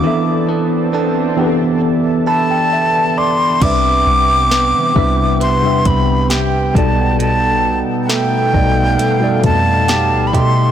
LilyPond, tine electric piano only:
\new Staff \with { instrumentName = "Tine electric piano" } { \time 4/4 \key c \major \tempo 4 = 67 << { r2 r8 b''16 g''16 e''16 a''16 <d'' d'''>16 b''16~ | b''16 r2. r8. | r1 | } \\ { <e b d' a' e''>4~ <e b d' a' e''>16 r16 <e b d' g' a' b'>4. r4 | <c g d' b' e''>4~ <c g d' b' e''>16 r16 <c g d' b' e''>8. <c g d' b' e''>4~ <c g d' b' e''>16 <b, g dis' a' d''>8~ | <b, g dis' a' d''>4~ <b, g dis' a' d''>16 r16 <b, g dis' a' d''>8. <b, g dis' a' d''>4. r16 | } >> }